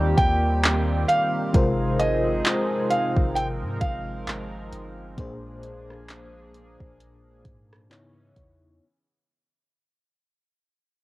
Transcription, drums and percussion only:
0.18 kick medium
0.18 closed hi-hat medium
0.64 clap loud
0.64 closed hi-hat medium
1.09 closed hi-hat medium
1.54 kick loud
1.54 closed hi-hat medium
2.00 closed hi-hat medium
2.45 clap loud
2.45 closed hi-hat medium
2.91 closed hi-hat medium
3.17 kick medium
3.36 closed hi-hat medium
3.81 kick medium
3.81 closed hi-hat medium
4.27 clap loud
4.27 closed hi-hat medium
4.73 closed hi-hat medium
5.18 kick loud
5.18 closed hi-hat medium
5.63 closed hi-hat medium
5.90 cross-stick medium
6.09 clap loud
6.09 closed hi-hat medium
6.54 closed hi-hat medium
6.80 kick medium
7.00 closed hi-hat medium
7.45 kick medium
7.45 closed hi-hat medium
7.73 cross-stick loud
7.91 clap loud
7.91 closed hi-hat medium
8.36 kick medium
8.36 closed hi-hat medium

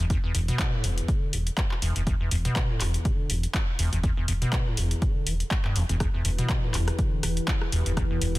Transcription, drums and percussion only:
0.10 kick loud
0.10 closed hi-hat medium
0.35 open hi-hat loud
0.48 closed hi-hat medium
0.59 kick loud
0.59 clap loud
0.59 closed hi-hat medium
0.84 open hi-hat loud
0.98 closed hi-hat medium
1.08 kick loud
1.08 closed hi-hat medium
1.33 open hi-hat loud
1.47 closed hi-hat medium
1.58 kick loud
1.58 clap loud
1.58 closed hi-hat soft
1.71 clap soft
1.82 open hi-hat loud
1.96 closed hi-hat medium
2.07 kick loud
2.07 closed hi-hat medium
2.31 open hi-hat loud
2.45 closed hi-hat medium
2.56 kick loud
2.56 clap loud
2.56 closed hi-hat soft
2.81 clap soft
2.81 open hi-hat loud
2.94 closed hi-hat medium
3.05 kick loud
3.05 closed hi-hat soft
3.30 open hi-hat loud
3.43 closed hi-hat medium
3.54 kick loud
3.54 clap loud
3.54 closed hi-hat soft
3.79 open hi-hat loud
3.93 closed hi-hat medium
4.04 kick loud
4.04 closed hi-hat medium
4.28 open hi-hat loud
4.42 closed hi-hat medium
4.53 kick loud
4.53 clap loud
4.53 closed hi-hat soft
4.77 open hi-hat loud
4.91 closed hi-hat medium
5.02 kick loud
5.02 closed hi-hat soft
5.27 open hi-hat loud
5.40 closed hi-hat medium
5.51 kick loud
5.51 clap loud
5.51 closed hi-hat soft
5.65 clap soft
5.76 open hi-hat loud
5.89 closed hi-hat medium
6.00 kick loud
6.00 cross-stick medium
6.00 closed hi-hat medium
6.25 open hi-hat loud
6.39 closed hi-hat medium
6.49 kick loud
6.49 cross-stick soft
6.49 clap loud
6.49 closed hi-hat soft
6.74 clap soft
6.74 open hi-hat loud
6.88 cross-stick medium
6.88 closed hi-hat medium
6.99 kick loud
6.99 closed hi-hat medium
7.23 cross-stick soft
7.23 open hi-hat loud
7.37 closed hi-hat medium
7.48 kick loud
7.48 clap loud
7.48 closed hi-hat soft
7.62 cross-stick medium
7.72 open hi-hat loud
7.86 closed hi-hat medium
7.97 kick loud
7.97 cross-stick medium
7.97 closed hi-hat medium
8.22 open hi-hat loud
8.35 closed hi-hat medium

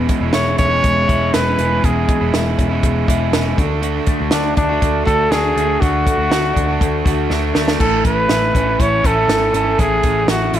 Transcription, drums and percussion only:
0.09 kick medium
0.09 closed hi-hat medium
0.33 snare loud
0.33 closed hi-hat medium
0.58 kick medium
0.58 closed hi-hat medium
0.84 kick medium
0.84 closed hi-hat medium
1.09 kick medium
1.09 closed hi-hat medium
1.34 snare loud
1.34 closed hi-hat medium
1.59 closed hi-hat medium
1.84 kick medium
1.84 closed hi-hat medium
2.09 kick medium
2.09 closed hi-hat medium
2.34 snare loud
2.34 closed hi-hat medium
2.59 kick medium
2.59 closed hi-hat medium
2.83 kick medium
2.83 closed hi-hat medium
3.08 kick medium
3.08 closed hi-hat medium
3.33 snare loud
3.33 closed hi-hat medium
3.58 kick loud
3.58 closed hi-hat medium
3.83 closed hi-hat medium
4.07 kick medium
4.07 closed hi-hat medium
4.31 snare loud
4.31 closed hi-hat medium
4.57 kick medium
4.57 closed hi-hat medium
4.82 kick medium
4.82 closed hi-hat medium
5.07 kick medium
5.07 closed hi-hat medium
5.32 snare loud
5.32 closed hi-hat medium
5.58 closed hi-hat medium
5.82 kick medium
5.82 closed hi-hat medium
6.07 kick medium
6.07 closed hi-hat medium
6.32 snare loud
6.32 closed hi-hat medium
6.57 kick medium
6.57 closed hi-hat medium
6.81 kick medium
6.81 closed hi-hat medium
7.06 kick medium
7.06 closed hi-hat medium
7.30 snare medium
7.55 snare medium
7.68 snare medium
7.80 kick medium
7.80 crash medium
8.05 kick medium
8.05 closed hi-hat medium
8.29 snare loud
8.29 closed hi-hat medium
8.55 kick medium
8.55 closed hi-hat medium
8.80 kick medium
8.80 closed hi-hat medium
9.04 kick medium
9.04 closed hi-hat medium
9.29 snare loud
9.29 closed hi-hat medium
9.54 closed hi-hat medium
9.79 kick medium
9.79 closed hi-hat medium
10.03 kick medium
10.03 closed hi-hat medium
10.28 snare loud
10.28 closed hi-hat medium
10.54 closed hi-hat medium

